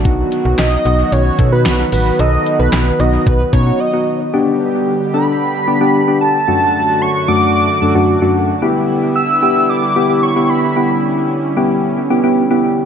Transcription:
0.00 4.29 F#3 medium
0.05 0.24 B1 loud
0.05 4.30 D#3 medium
0.05 0.65 B3 medium
0.05 4.30 B3 medium
0.05 0.65 D#4 medium
0.05 4.30 F#4 medium
0.05 0.65 F#4 loud
0.05 kick loud
0.05 closed hi-hat medium
0.32 closed hi-hat medium
0.45 0.55 B1 medium
0.58 0.77 B1 loud
0.58 1.14 D#5 loud
0.58 snare loud
0.58 clap medium
0.58 closed hi-hat medium
0.85 1.04 B1 loud
0.85 1.26 B3 medium
0.85 1.25 D#4 medium
0.85 1.26 F#4 medium
0.85 closed hi-hat medium
1.12 1.31 B1 loud
1.12 1.52 C#5 loud
1.12 closed hi-hat medium
1.39 1.67 B2 loud
1.39 1.49 B3 medium
1.39 1.49 D#4 medium
1.39 1.49 A4 medium
1.39 kick medium
1.39 closed hi-hat medium
1.52 1.72 B3 medium
1.52 1.72 D#4 medium
1.52 1.72 F#4 medium
1.52 1.90 B4 loud
1.66 1.85 B1 medium
1.66 snare loud
1.66 clap medium
1.66 closed hi-hat medium
1.79 2.09 B3 medium
1.79 2.09 D#4 medium
1.79 2.09 F#4 medium
1.92 2.11 A1 medium
1.92 2.21 B4 loud
1.92 open hi-hat medium
2.19 2.38 B1 loud
2.19 2.80 B3 medium
2.19 2.80 D#4 medium
2.19 2.80 A4 medium
2.19 2.59 D#5 loud
2.19 closed hi-hat medium
2.46 closed hi-hat medium
2.59 2.69 B1 medium
2.59 3.01 B4 medium
2.73 2.92 B1 loud
2.73 snare loud
2.73 clap medium
2.73 closed hi-hat medium
3.00 3.18 B1 loud
3.00 3.40 B3 medium
3.00 3.40 D#4 medium
3.00 3.40 F#4 medium
3.00 3.28 D#5 loud
3.00 closed hi-hat medium
3.26 3.45 B1 loud
3.26 3.52 B4 loud
3.26 kick medium
3.26 closed hi-hat medium
3.53 3.72 B2 loud
3.53 3.63 B3 medium
3.53 3.63 D#4 medium
3.53 3.63 F#4 medium
3.53 3.81 C#5 medium
3.53 kick medium
3.53 closed hi-hat medium
3.67 3.87 B3 medium
3.67 3.87 D#4 medium
3.67 3.87 F#4 medium
3.80 4.20 D#5 medium
3.93 4.24 B3 medium
3.93 4.24 D#4 medium
3.93 4.24 F#4 medium
4.34 6.46 D3 medium
4.34 6.46 G3 medium
4.34 6.46 B3 medium
4.34 4.94 B3 medium
4.34 4.94 D4 medium
4.34 6.46 G4 medium
4.34 4.94 G4 loud
5.14 5.54 B3 medium
5.14 5.54 D4 medium
5.14 5.54 A4 medium
5.14 6.17 B5 loud
5.67 5.78 B3 medium
5.67 5.78 D4 medium
5.67 5.78 G4 medium
5.81 6.01 B3 medium
5.81 6.01 D4 medium
5.81 6.01 G4 loud
6.08 6.38 B3 medium
6.08 6.38 D4 medium
6.08 6.38 G4 medium
6.21 7.03 A5 loud
6.48 8.60 F#2 medium
6.48 7.08 F#2 medium
6.48 12.85 D3 medium
6.48 8.60 F#3 medium
6.48 8.60 A3 medium
6.48 7.08 A3 medium
6.48 7.08 D4 medium
6.48 8.60 F#4 medium
6.48 7.08 F#4 medium
7.02 7.28 C#6 loud
7.28 7.68 F#2 medium
7.28 7.68 A3 medium
7.28 7.68 D4 medium
7.28 7.68 F#4 medium
7.28 8.31 D6 loud
7.82 7.92 F#2 medium
7.82 7.92 A3 medium
7.82 7.92 D4 medium
7.82 7.92 A4 medium
7.95 8.15 F#2 loud
7.95 8.15 A3 medium
7.95 8.15 D4 medium
7.95 8.15 F#4 loud
8.22 8.52 F#2 medium
8.22 8.52 A3 medium
8.22 8.52 D4 medium
8.22 8.52 F#4 loud
8.62 12.85 G3 medium
8.62 9.22 B3 medium
8.62 10.74 B3 medium
8.62 9.22 E4 medium
8.62 12.85 E4 medium
8.62 9.22 G4 loud
9.16 9.71 E6 loud
9.42 9.83 B3 medium
9.42 9.83 E4 medium
9.42 9.83 G4 medium
9.69 10.22 D6 loud
9.96 10.06 B3 medium
9.96 10.06 E4 medium
9.96 10.06 G4 medium
10.09 10.29 B3 medium
10.09 10.30 E4 medium
10.09 10.29 G4 medium
10.23 10.51 C#6 loud
10.36 10.66 B3 medium
10.36 10.66 E4 medium
10.36 10.66 G4 medium
10.50 11.30 B5 medium
10.76 11.37 B3 medium
10.76 12.85 C#4 medium
10.76 11.37 E4 medium
10.76 11.37 G4 medium
11.57 11.97 B3 medium
11.57 11.97 E4 medium
11.57 11.97 G4 loud
12.10 12.20 B3 medium
12.10 12.20 E4 medium
12.10 12.20 G4 loud
12.24 12.44 B3 medium
12.24 12.44 E4 medium
12.24 12.44 G4 loud
12.51 12.81 B3 medium
12.51 12.81 E4 medium
12.51 12.81 G4 loud

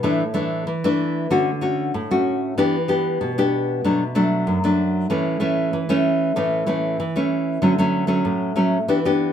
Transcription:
0.03 0.64 A2 medium
0.03 0.22 E3 medium
0.03 0.22 A3 medium
0.03 0.23 D4 medium
0.34 0.64 E3 medium
0.34 0.65 A3 medium
0.34 0.65 D4 medium
0.67 0.83 E3 medium
0.84 1.26 E3 medium
0.84 1.26 A3 medium
0.84 1.26 D4 medium
1.30 1.91 D3 medium
1.30 1.49 A3 medium
1.30 1.49 C#4 medium
1.30 1.49 F#4 medium
1.61 1.91 A3 soft
1.61 1.91 C#4 medium
1.61 1.92 F#4 medium
1.94 2.54 A2 medium
2.11 2.53 A3 soft
2.11 2.53 C#4 medium
2.11 2.53 F#4 medium
2.58 3.17 E3 medium
2.58 2.76 B3 medium
2.58 2.76 D4 medium
2.58 2.76 G4 medium
2.88 3.31 B3 medium
2.88 3.31 D4 medium
2.88 3.31 G4 medium
3.21 3.80 B2 medium
3.38 3.79 B3 medium
3.38 3.79 D4 medium
3.38 3.80 G4 medium
3.84 4.44 B2 medium
3.84 4.02 F#3 medium
3.84 4.03 A3 medium
3.84 4.03 D4 medium
4.15 4.57 F#3 medium
4.15 4.57 A3 medium
4.15 4.58 D4 medium
4.47 5.07 F#2 medium
4.64 5.05 F#3 medium
4.64 5.06 A3 medium
4.64 5.06 D4 medium
5.10 5.70 A2 medium
5.10 5.36 E3 medium
5.10 5.36 A3 medium
5.10 5.37 C#4 medium
5.40 5.72 E3 medium
5.40 5.83 A3 medium
5.40 5.83 C#4 medium
5.73 5.88 E3 medium
5.89 6.31 E3 medium
5.89 6.31 A3 medium
5.89 6.32 C#4 medium
6.36 6.96 A2 medium
6.36 6.63 E3 medium
6.36 6.63 A3 medium
6.36 6.63 C#4 medium
6.67 6.97 E3 medium
6.67 6.97 A3 medium
6.67 6.97 C#4 medium
7.00 7.15 E3 medium
7.16 7.58 E3 medium
7.16 7.58 A3 medium
7.16 7.58 C#4 medium
7.62 8.22 D3 medium
7.62 7.73 F#3 medium
7.62 7.73 A3 soft
7.62 7.73 C#4 medium
7.78 8.05 F#3 medium
7.78 8.05 A3 medium
7.78 8.05 C#4 medium
8.07 8.51 F#3 medium
8.07 8.51 A3 medium
8.07 8.51 C#4 medium
8.25 8.85 A2 medium
8.56 8.77 F#3 medium
8.56 8.77 A3 medium
8.56 8.77 C#4 medium
8.88 9.33 E3 medium
8.88 8.98 B3 medium
8.88 8.98 D4 medium
8.88 8.98 G4 medium
9.05 9.31 B3 medium
9.05 9.32 D4 medium
9.05 9.32 G4 medium

